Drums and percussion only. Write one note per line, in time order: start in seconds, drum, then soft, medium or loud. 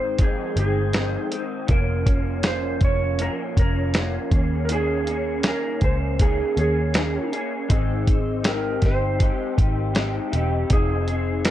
0.18 kick medium
0.18 closed hi-hat medium
0.57 closed hi-hat medium
0.93 snare medium
0.93 closed hi-hat medium
1.32 closed hi-hat medium
1.68 kick loud
1.68 closed hi-hat medium
2.06 kick medium
2.06 closed hi-hat medium
2.43 snare loud
2.43 closed hi-hat medium
2.81 kick medium
2.81 closed hi-hat medium
3.19 closed hi-hat medium
3.57 kick medium
3.57 closed hi-hat medium
3.94 snare loud
3.94 closed hi-hat medium
4.31 kick medium
4.31 closed hi-hat medium
4.69 closed hi-hat medium
5.07 closed hi-hat medium
5.43 snare loud
5.43 closed hi-hat medium
5.81 kick medium
5.81 closed hi-hat medium
6.19 kick medium
6.19 closed hi-hat medium
6.57 closed hi-hat medium
6.94 snare medium
6.94 closed hi-hat medium
7.33 closed hi-hat medium
7.70 kick loud
7.70 closed hi-hat medium
8.07 kick medium
8.07 closed hi-hat medium
8.44 snare loud
8.44 closed hi-hat medium
8.82 kick medium
8.82 snare soft
8.82 closed hi-hat medium
9.20 kick medium
9.20 closed hi-hat medium
9.58 kick medium
9.58 closed hi-hat medium
9.95 snare loud
9.95 closed hi-hat medium
10.33 closed hi-hat medium
10.70 kick loud
10.70 closed hi-hat medium
11.08 closed hi-hat medium
11.45 snare loud
11.45 closed hi-hat medium